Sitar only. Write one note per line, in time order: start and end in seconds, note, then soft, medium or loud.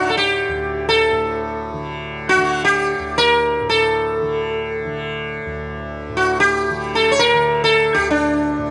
0.10 0.16 A4 medium
0.17 0.88 G4 medium
0.89 1.69 A4 medium
2.29 2.64 F#4 medium
2.65 3.19 G4 medium
3.18 3.69 A#4 medium
3.69 4.99 A4 medium
6.17 6.40 F#4 medium
6.40 6.96 G4 medium
6.95 7.11 A4 medium
7.12 7.19 C#5 medium
7.19 7.63 A#4 medium
7.64 7.95 A4 medium
7.94 8.10 G4 medium
8.10 8.71 D4 medium